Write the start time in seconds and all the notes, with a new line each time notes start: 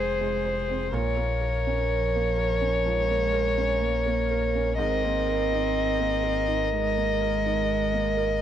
Already playing: F1 C3 G#3 C4 G#4 C5
0.21 G#3
0.45 C5
0.69 C4
0.92 A#1 A#2 A#4 C#5
1.17 A#3
1.41 A#4
1.67 C#4
1.90 F3
2.15 A#3
2.38 A#4
2.61 C#4
2.85 F3 G#3
3.10 A#3
3.33 A#4
3.57 C#4
3.82 A#3
4.06 A#3
4.31 A#4
4.55 C#4
4.78 G#1 G#2 C4 A#4 D#5
5.04 A#3
5.28 A#4
5.52 D#4
6.00 A#3
6.24 A#4
6.48 D#4
6.72 D#3 G#3
6.96 A#3
7.21 A#4
7.46 D#4
7.93 A#3
8.17 A#4